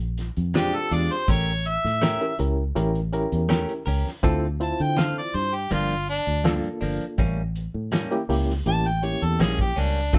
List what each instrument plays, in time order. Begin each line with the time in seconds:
Already playing: fingered electric bass A#1
0.00 closed hi-hat
0.18 snare, closed hi-hat
0.37 fingered electric bass F2, closed hi-hat
0.54 clean electric guitar A#2 G#3 D4 F4, reed electric piano C4 D4 F4 G4, harmonica G4, snare, closed hi-hat
0.73 harmonica A4, closed hi-hat
0.91 fingered electric bass E2, clean electric guitar G#3 D4 F4, harmonica D5, open hi-hat
1.10 harmonica C5, closed hi-hat
1.28 fingered electric bass A1, clean electric guitar A3 C#4 G4 A#4, harmonica C#5, kick, closed hi-hat
1.65 harmonica E5, closed hi-hat
1.84 fingered electric bass A2, snare
2.02 clean electric guitar A3 C#4 G4 A#4, snare, closed hi-hat
2.21 reed electric piano C#4 E4 G4 A#4, closed hi-hat
2.39 fingered electric bass C#2, reed electric piano C#4 E4 G4 A#4, closed hi-hat
2.75 fingered electric bass A1, reed electric piano C#4 E4 G4 A#4, closed hi-hat
2.95 closed hi-hat
3.13 reed electric piano C#4 E4 G4 A#4, closed hi-hat
3.32 fingered electric bass E2, closed hi-hat
3.49 clean electric guitar A3 C#4 G4 A#4, snare, closed hi-hat
3.69 closed hi-hat
3.86 fingered electric bass C#2, clean electric guitar C#4 G4 A#4, open hi-hat
4.07 snare
4.23 fingered electric bass D2, clean electric guitar D3 C4 F4 A4, reed electric piano C4 E4 F4 A4, kick, closed hi-hat
4.60 reed electric piano C4 E4 F4 C5, harmonica A5, closed hi-hat
4.80 fingered electric bass D3, harmonica G5, closed hi-hat
4.97 clean electric guitar D3 C4 F4 A4, harmonica F5, snare, closed hi-hat
5.18 harmonica D5
5.34 fingered electric bass G2, harmonica C5, closed hi-hat
5.55 harmonica G4
5.71 fingered electric bass G1, clean electric guitar G2 F3 A#3 D4, harmonica F4, closed hi-hat
5.90 closed hi-hat
6.08 harmonica D4, closed hi-hat
6.27 fingered electric bass D2, closed hi-hat
6.44 clean electric guitar G2 F3 A#3 D4, reed electric piano A#3 D4 F4 A4, snare, closed hi-hat
6.64 closed hi-hat
6.81 fingered electric bass G1, clean electric guitar F3 A#3 D4, open hi-hat
7.01 closed hi-hat
7.18 fingered electric bass A1, clean electric guitar A2 G3 A#3 C#4, kick, closed hi-hat
7.56 closed hi-hat
7.74 fingered electric bass A2
7.92 clean electric guitar A2 G3 A#3 C#4, snare, closed hi-hat
8.11 reed electric piano A#3 C#4 E4 G4, closed hi-hat
8.29 fingered electric bass C#2, reed electric piano A#3 C#4 E4 G4, open hi-hat
8.50 snare
8.66 fingered electric bass A1, reed electric piano A#3 C#4 E4 G4, harmonica A5, closed hi-hat
8.85 harmonica G5, closed hi-hat
9.03 reed electric piano A#3 C#4 E4 G4, harmonica C#5, closed hi-hat
9.22 fingered electric bass E2, harmonica A4, closed hi-hat
9.39 fingered electric bass A#1, clean electric guitar A2 G3 A#3 C#4, harmonica G#4, snare, closed hi-hat
9.59 harmonica G4, kick, closed hi-hat
9.76 fingered electric bass C#2, clean electric guitar G3 A#3 C#4, harmonica D4, open hi-hat
10.13 fingered electric bass D2, clean electric guitar D3 A3 C4 F4, reed electric piano C4 E4 F4 A4, harmonica A4, kick, closed hi-hat